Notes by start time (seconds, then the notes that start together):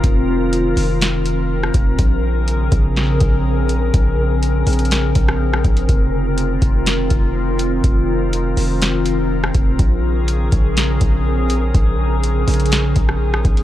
Already playing: D#3 C4 F4 A#4
0.04 F1, kick, closed hi-hat
0.53 closed hi-hat
0.77 F1, open hi-hat
1.01 snare, closed hi-hat
1.26 closed hi-hat
1.63 cross-stick
1.74 F1, kick, closed hi-hat
1.99 A#1 C#3 C4 G#4, kick, closed hi-hat
2.48 closed hi-hat
2.72 A#1, kick, closed hi-hat
2.96 snare, closed hi-hat
3.20 A#1, kick, closed hi-hat
3.69 closed hi-hat
3.94 A#1, kick, closed hi-hat
4.43 closed hi-hat
4.67 A#1, closed hi-hat, open hi-hat
4.73 closed hi-hat
4.79 closed hi-hat
4.85 closed hi-hat
4.92 snare, closed hi-hat
5.16 A#1, kick, closed hi-hat
5.29 cross-stick
5.54 cross-stick
5.65 A#1, kick, closed hi-hat
5.77 closed hi-hat
5.89 F1 D#3 F4, kick, closed hi-hat
6.38 closed hi-hat
6.62 F1, kick, closed hi-hat
6.87 snare, closed hi-hat
7.11 F1, kick, closed hi-hat
7.59 closed hi-hat
7.84 F1, kick, closed hi-hat
8.33 closed hi-hat
8.57 F1, open hi-hat
8.82 snare, closed hi-hat
9.06 closed hi-hat
9.44 cross-stick
9.55 F1, kick, closed hi-hat
9.79 A#1 C#3 G#4 A#4, kick, closed hi-hat
10.28 closed hi-hat
10.52 A#1, kick, closed hi-hat
10.77 snare, closed hi-hat
11.01 A#1, kick, closed hi-hat
11.50 closed hi-hat
11.74 A#1, kick, closed hi-hat
12.23 closed hi-hat
12.48 A#1, closed hi-hat, open hi-hat
12.54 closed hi-hat
12.60 closed hi-hat
12.66 closed hi-hat
12.72 snare, closed hi-hat
12.96 A#1, kick, closed hi-hat
13.09 cross-stick
13.34 cross-stick
13.45 A#1, kick, closed hi-hat
13.57 closed hi-hat